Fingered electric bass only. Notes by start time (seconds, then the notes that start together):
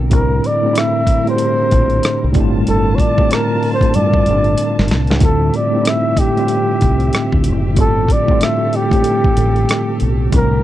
Already playing: B1
0.12 C2
1.73 A#1
2.24 C2
2.36 G1
2.69 G1
3.96 G2
4.28 G1
4.79 G1
4.91 C2
5.10 C#2
5.22 D2
6.83 C2
7.33 D2
7.47 F#1
7.78 G1
9.37 A1
10.02 B1
10.33 C2